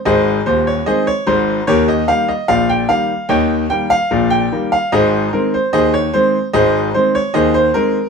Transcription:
<<
  \new Staff \with { instrumentName = "Grand piano" } { \time 2/4 \key aes \major \tempo 4 = 74 <aes' c'' ees''>8 c''16 des''16 <aes' c'' ees''>16 des''16 c''8 | <g' bes' des''>16 ees''16 f''16 ees''16 f''16 g''16 f''8 | <des'' ees'' g''>8 g''16 f''8 g''8 f''16 | <aes' c'' ees''>8 bes'16 c''16 <aes' c'' ees''>16 des''16 c''8 |
<aes' c'' ees''>8 c''16 des''16 <aes' c'' ees''>16 c''16 bes'8 | }
  \new Staff \with { instrumentName = "Grand piano" } { \clef bass \time 2/4 \key aes \major <aes,, aes,>8 <ees,, ees,>8 <ees aes c'>8 <aes,, aes,>8 | <ees, ees>8 <ees g bes>8 <bes,, bes,>8 <ees g bes>8 | <ees, ees>8 <ees g bes>8 <bes,, bes,>8 <ees g bes>8 | <aes,, aes,>8 <ees aes c'>8 <ees, ees>8 <ees aes c'>8 |
<aes,, aes,>8 <ees aes c'>8 <ees, ees>8 <ees aes c'>8 | }
>>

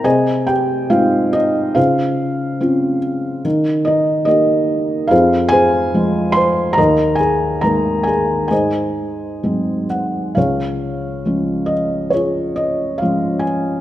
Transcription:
<<
  \new Staff \with { instrumentName = "Felt piano" } { \time 4/4 \key aes \major \tempo 4 = 70 << { aes''8 g''8 f''8 ees''8 f''4. r8 | r8 ees''8 ees''4 f''8 aes''4 c'''8 | bes''8 aes''8 bes''8 aes''8 aes''4. ges''8 | \key des \major f''4. ees''8 des''8 ees''8 f''8 aes''8 | } \\ { <aes' c'' ees''>8 g'8 f'8 ees'8 <f' aes' c''>4. r8 | r8 ees'8 r4 <f' aes' c''>8 <aes' c''>4 c''8 | <bes' ees''>8 aes'8 bes'8 aes'8 <aes' c'' ees''>4. r8 | <aes' des''>2 <f' aes'>2 | } >> }
  \new Staff \with { instrumentName = "Felt piano" } { \clef bass \time 4/4 \key aes \major c4 <aes c' ees'>4 des4 <c' des' f'>4 | ees4 <bes ees' g'>4 f,4 <f aes>4 | ees,4 <ees aes bes>4 aes,4 <ges aes c'>4 | \key des \major des,4 <f aes des'>4 r4 <f aes des'>4 | }
>>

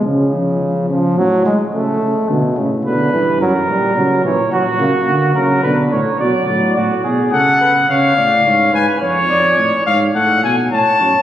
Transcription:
<<
  \new Staff \with { instrumentName = "Cornet" } { \time 4/4 \key fis \phrygian \tempo 4 = 107 r1 | r1 | r1 | r4 fis''4 eis''4. gis''8 |
cis''4. eis''8 fis''8 gis''8 a''4 | }
  \new Staff \with { instrumentName = "Flugelhorn" } { \time 4/4 \key fis \phrygian r1 | r4 b'4 ais'4. cis''8 | fis'4. ais'8 b'8 cis''8 d''4 | fis'8 gis'8 a'8 b'8 cis''8 d''8 cis''8 b'8 |
cis''8 d''8 d''8 cis''8 a'8 r8 cis''8 cis''8 | }
  \new Staff \with { instrumentName = "Trombone" } { \clef bass \time 4/4 \key fis \phrygian cis4. eis8 fis8 gis8 a4 | b,8 cis8 d8 e8 fis8 g8 fis8 e8 | fis8 ais8 ais8 fis8 d8 r8 fis8 fis8 | r1 |
r1 | }
  \new Staff \with { instrumentName = "Tuba" } { \clef bass \time 4/4 \key fis \phrygian cis8 eis8 eis8 cis8 a,8 r8 cis8 cis8 | d8 a,8 b,8 g,8 fis,8 ais,8 cis8 ais,8 | ais,8 cis8 d8 cis8 b,8 a,8 b,8 a,8 | a,8 b,8 cis4 cis8 a,8 gis,8 gis,8 |
eis,8 eis,8 a,8 gis,8 a,8 b,8 a,8 fis,8 | }
>>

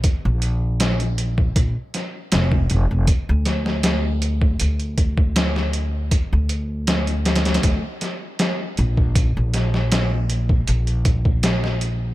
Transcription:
<<
  \new Staff \with { instrumentName = "Upright bass" } { \clef bass \time 4/4 \key bes \lydian \tempo 4 = 79 r16 bes,,4.~ bes,,16 bes,,16 r8. f,,8 f,,16 f,,16 | r16 d,4.~ d,16 d,2 | r16 d,4.~ d,16 d,16 r4 r16 bes,,8~ | bes,,16 bes,,4.~ bes,,16 bes,,2 | }
  \new DrumStaff \with { instrumentName = "Drums" } \drummode { \time 4/4 <hh bd>8 hh8 <hh sn>16 hh16 hh16 bd16 <hh bd>8 <hh sn>8 <hh sn>16 bd16 hh8 | <hh bd>8 <hh sn>16 sn16 <hh sn>8 hh16 bd16 hh16 hh16 <hh bd>16 bd16 <hh sn>16 sn16 hh8 | <hh bd>8 hh8 <hh sn>16 hh16 <hh sn>32 <hh sn>32 <hh sn>32 <hh sn>32 <hh bd>8 <hh sn>8 <hh sn>8 hh16 bd16 | <hh bd>8 <hh sn>16 sn16 <hh sn>8 hh16 bd16 hh16 hh16 <hh bd>16 bd16 <hh sn>16 sn16 hh8 | }
>>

